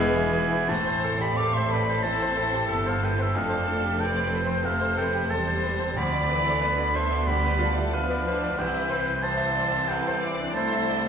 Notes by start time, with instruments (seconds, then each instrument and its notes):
Already playing: double bass section E1, timpani E2, cello section E2, grand piano E2 E4 C5 E5, trombone section E3 G#3, viola section E3 G#3, bassoon G#3, french horn section B3 E4, violin section B3 B4
0.00 grand piano G#4, oboe G#5
0.17 grand piano E4
0.33 grand piano G#4
0.51 grand piano E4
0.68 double bass section A1, grand piano A2, cello section A2, viola section E3 C4, violin section C5, oboe A5
0.87 grand piano C5
1.04 grand piano A4
1.21 grand piano G4, violin section D5, oboe B5
1.37 viola section A3, violin section A4 F5, grand piano A4, oboe D6
1.54 grand piano C5, violin section E5, oboe C6
1.70 grand piano B4, violin section D5, oboe B5
1.89 grand piano C5
2.03 grand piano E3, viola section C4 E4, violin section C5, oboe A5
2.22 grand piano C5
2.37 viola section E4, grand piano A4
2.53 grand piano G4
2.69 double bass section G1, cello section G2, viola section B3, grand piano A4, violin section A4, oboe E5
2.86 violin section A4, grand piano C5, oboe F5
3.03 violin section B4, grand piano B4, oboe G5
3.18 violin section G4, grand piano C5, oboe E5
3.34 double bass section F1, grand piano F2, cello section F2, viola section A3 D4, violin section A4, oboe F5
3.49 grand piano C5
3.67 grand piano A4
3.83 grand piano G4
3.98 viola section C4, grand piano A4, violin section B4 D5, oboe G5
4.16 grand piano C5
4.33 grand piano B4, violin section C5
4.47 grand piano C5
4.64 grand piano C3, viola section A3, violin section A4 C5, oboe F5
4.81 grand piano C5
4.97 grand piano A4, violin section B4, oboe G5
5.15 grand piano G4
5.30 double bass section E1, cello section E2, viola section G3 C4, grand piano A4, violin section C5, oboe A5
5.47 grand piano C5
5.63 grand piano B4
5.80 grand piano C5
5.96 grand piano D2, double bass section D2, cello section D2, viola section F3, violin section D5, oboe B5
6.13 grand piano D5
6.30 viola section E3, grand piano B4
6.47 grand piano A4
6.61 viola section D3 B3, grand piano B4, violin section B4
6.78 grand piano D5
6.95 violin section A4 E5, grand piano C5, oboe C6
7.11 grand piano D5
7.27 grand piano D2, viola section G3, violin section G4 D5, oboe B5
7.45 grand piano B4
7.59 grand piano F4, violin section A4
7.76 grand piano E4
7.93 viola section F3 B3, grand piano B4, violin section B4, oboe F5
8.11 grand piano D5
8.27 viola section D4, grand piano C5
8.44 grand piano D5
8.58 grand piano C2, double bass section C2, cello section C2, viola section E3 E4, violin section B4 C5, oboe G5
8.73 grand piano E5
8.89 grand piano C5
9.06 grand piano B4
9.22 viola section E3 C4, grand piano C5, violin section C5, oboe A5
9.37 grand piano E5
9.55 viola section C4, grand piano D5
9.72 grand piano E5
9.88 grand piano C2, violin section A4 B4, oboe G5
10.07 grand piano C5
10.20 grand piano E4, violin section D5
10.40 grand piano D4
10.53 viola section A3 E4, violin section C5, grand piano C5, oboe A5
10.72 grand piano E5
10.89 grand piano D5